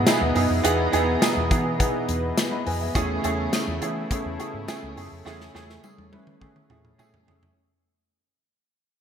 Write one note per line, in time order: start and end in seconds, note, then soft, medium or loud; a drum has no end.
0.00 2.91 B2 medium
0.00 7.52 E3 medium
0.00 0.06 B3 loud
0.00 7.52 B3 medium
0.00 0.07 D#4 medium
0.00 0.07 E4 loud
0.00 2.91 E4 medium
0.00 0.07 G#4 loud
0.00 2.91 G#4 medium
0.00 2.67 B4 medium
0.00 2.91 B4 medium
0.00 2.91 D#5 medium
0.06 0.26 B3 loud
0.06 0.26 D#4 loud
0.06 0.26 E4 loud
0.06 0.26 G#4 loud
0.06 snare loud
0.06 closed hi-hat medium
0.06 tambourine medium
0.21 0.32 D#2 medium
0.35 0.46 F#2 medium
0.35 0.54 B3 medium
0.35 0.55 D#4 medium
0.35 0.55 E4 medium
0.35 0.55 G#4 medium
0.35 open hi-hat medium
0.50 0.61 F2 medium
0.64 0.86 E2 loud
0.64 0.83 B3 loud
0.64 0.83 D#4 loud
0.64 0.84 E4 loud
0.64 0.84 G#4 loud
0.64 closed hi-hat loud
0.92 1.15 E2 medium
0.92 1.12 B3 loud
0.92 1.12 D#4 loud
0.92 1.12 E4 loud
0.92 1.13 G#4 loud
0.92 closed hi-hat medium
1.21 1.41 B3 medium
1.21 1.41 D#4 medium
1.21 1.41 E4 medium
1.21 1.42 G#4 medium
1.21 snare loud
1.21 closed hi-hat medium
1.21 tambourine medium
1.37 1.47 E2 medium
1.50 1.83 E3 medium
1.50 1.70 B3 medium
1.50 1.70 D#4 medium
1.50 1.70 E4 medium
1.50 1.70 G#4 medium
1.50 kick loud
1.50 closed hi-hat medium
1.79 1.99 B3 medium
1.79 1.99 D#4 medium
1.79 1.99 E4 medium
1.79 1.99 G#4 medium
1.79 kick medium
1.79 closed hi-hat medium
2.09 2.30 E2 medium
2.09 closed hi-hat medium
2.37 snare loud
2.37 closed hi-hat medium
2.37 tambourine medium
2.52 2.66 D#5 medium
2.52 2.65 B5 medium
2.66 2.88 F2 medium
2.66 2.80 B4 medium
2.66 2.80 G#5 medium
2.66 open hi-hat medium
2.81 2.94 G#4 medium
2.81 3.08 E5 medium
2.95 3.17 E2 loud
2.95 7.53 C#3 medium
2.95 3.14 A3 loud
2.95 7.53 A3 medium
2.95 3.14 C#4 loud
2.95 7.53 E4 medium
2.95 3.14 E4 loud
2.95 3.15 G#4 loud
2.95 kick loud
2.95 closed hi-hat loud
3.23 3.46 E2 loud
3.23 3.43 A3 loud
3.23 3.43 C#4 loud
3.23 3.43 E4 loud
3.23 3.44 G#4 loud
3.23 closed hi-hat medium
3.52 3.72 A3 medium
3.52 3.72 C#4 medium
3.52 3.72 E4 medium
3.52 3.72 G#4 medium
3.52 snare loud
3.52 closed hi-hat medium
3.52 tambourine medium
3.67 3.78 E2 loud
3.81 4.03 E3 medium
3.81 4.01 A3 medium
3.81 4.01 C#4 medium
3.81 4.01 E4 medium
3.81 4.01 G#4 medium
3.81 closed hi-hat medium
4.10 4.30 A3 medium
4.10 4.30 C#4 medium
4.10 7.53 C#4 medium
4.10 4.30 E4 medium
4.10 4.30 G#4 medium
4.10 7.53 A4 medium
4.10 7.53 C#5 medium
4.10 kick medium
4.10 closed hi-hat medium
4.25 4.36 E2 loud
4.39 4.58 A3 medium
4.39 4.59 C#4 medium
4.39 4.59 E4 medium
4.39 4.59 G#4 medium
4.39 closed hi-hat medium
4.54 4.65 G#2 medium
4.68 4.87 A3 loud
4.68 4.87 C#4 loud
4.68 4.88 E4 medium
4.68 4.88 G#4 loud
4.68 snare loud
4.68 closed hi-hat medium
4.68 tambourine medium
4.83 4.93 C#2 medium
4.97 5.08 F#2 loud
4.97 5.16 A3 medium
4.97 5.16 C#4 medium
4.97 5.16 E4 medium
4.97 5.17 G#4 medium
4.97 open hi-hat medium
5.12 5.22 F2 medium
5.25 5.47 E2 loud
5.25 5.45 A3 loud
5.25 5.45 C#4 loud
5.25 5.45 E4 loud
5.25 5.45 G#4 loud
5.25 snare medium
5.40 snare medium
5.54 5.76 E2 loud
5.54 5.74 A3 loud
5.54 5.74 C#4 medium
5.54 5.74 E4 medium
5.54 5.74 G#4 loud
5.54 snare medium
5.69 snare medium
5.83 6.03 A3 medium
5.83 6.03 C#4 medium
5.83 6.03 E4 medium
5.83 6.03 G#4 medium
5.83 high tom medium
5.83 tambourine medium
5.98 6.14 E2 loud
5.98 high tom medium
6.12 6.45 E3 medium
6.12 6.31 A3 medium
6.12 6.32 C#4 medium
6.12 6.32 E4 medium
6.12 6.32 B4 medium
6.12 high tom medium
6.27 mid tom medium
6.41 6.60 A3 medium
6.41 6.60 C#4 medium
6.41 6.61 E4 medium
6.41 6.61 G#4 medium
6.41 kick medium
6.41 mid tom medium
6.56 mid tom medium
6.69 6.92 E2 medium
6.69 6.89 A3 medium
6.69 6.89 C#4 medium
6.69 6.89 E4 medium
6.69 6.90 G#4 medium
6.69 mid tom medium
6.85 mid tom medium
6.98 7.18 A3 loud
6.98 7.18 C#4 medium
6.98 7.18 E4 medium
6.98 7.18 G#4 loud
6.98 mid tom loud
6.98 tambourine medium
7.14 floor tom medium
7.27 7.49 F2 medium
7.27 7.47 A3 medium
7.27 7.47 C#4 medium
7.27 7.47 E4 medium
7.27 7.47 G#4 medium
7.27 floor tom loud
7.43 floor tom medium